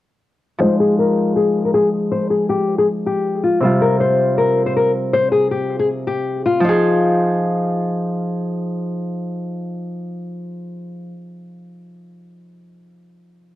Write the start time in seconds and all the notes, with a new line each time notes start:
0.59 F3 D#4 C5
0.63 G#3
0.80 G#4
0.99 A#4
1.36 G#4
1.65 A#4
1.74 G#4
2.12 C5
2.30 G#4
2.49 G4
2.78 G#4
3.06 G4
3.44 F4
3.60 C3 G3 C5
3.65 F4
3.82 A#4
4.00 C5
4.38 A#4
4.66 C5
4.76 A#4
5.13 C5
5.32 G#4
5.51 G4
5.79 G#4
6.07 G4
6.46 F4
6.60 F3
6.64 D#4 F4
6.69 G#4